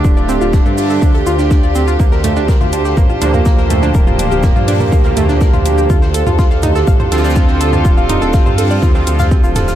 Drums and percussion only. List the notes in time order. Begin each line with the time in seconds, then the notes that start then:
0.05 kick, shaker
0.17 shaker
0.29 shaker
0.41 shaker
0.53 kick, snare, shaker
0.66 shaker
0.78 open hi-hat, shaker
0.90 shaker
1.02 kick, shaker
1.15 closed hi-hat, shaker
1.26 shaker
1.39 snare, shaker
1.51 kick, snare, shaker
1.63 shaker
1.75 shaker
1.88 shaker
2.00 kick, shaker
2.12 snare, shaker
2.24 closed hi-hat, mid tom, shaker
2.36 shaker
2.48 kick, snare, shaker
2.61 snare, mid tom, shaker
2.72 closed hi-hat, shaker
2.85 snare, shaker
2.97 kick, mid tom, shaker
3.10 shaker
3.21 closed hi-hat, shaker
3.34 mid tom, shaker
3.46 kick, snare, shaker
3.58 snare, shaker
3.70 closed hi-hat, mid tom, shaker
3.83 shaker
3.94 kick, shaker
4.07 mid tom, shaker
4.19 closed hi-hat, shaker
4.32 shaker
4.43 kick, snare, mid tom, shaker
4.56 shaker
4.68 closed hi-hat, open hi-hat, shaker
4.80 mid tom, shaker
4.92 kick, shaker
5.04 closed hi-hat, shaker
5.17 closed hi-hat, mid tom, shaker
5.29 snare, shaker
5.41 kick, snare, shaker
5.54 mid tom, shaker
5.66 closed hi-hat, shaker
5.78 shaker
5.90 kick, mid tom, shaker
6.02 snare, shaker
6.14 closed hi-hat, shaker
6.27 mid tom, shaker
6.39 kick, snare, shaker
6.51 snare, shaker
6.62 closed hi-hat, mid tom, shaker
6.75 snare, shaker
6.87 kick, shaker
7.00 mid tom, shaker
7.12 snare, closed hi-hat, shaker
7.18 snare, shaker
7.23 snare, shaker
7.30 snare, shaker
7.36 kick, snare, mid tom, shaker
7.49 snare, shaker
7.61 closed hi-hat, shaker
7.73 mid tom, shaker
7.85 kick, shaker
7.97 shaker
8.09 closed hi-hat, mid tom, shaker
8.22 shaker
8.33 kick, snare, shaker
8.46 mid tom, shaker
8.58 closed hi-hat, open hi-hat, shaker
8.71 shaker
8.82 kick, snare, mid tom, shaker
8.95 snare, shaker
9.07 closed hi-hat, shaker
9.19 snare, mid tom, shaker
9.31 kick, shaker
9.44 shaker
9.56 snare, closed hi-hat, mid tom, shaker
9.68 snare, shaker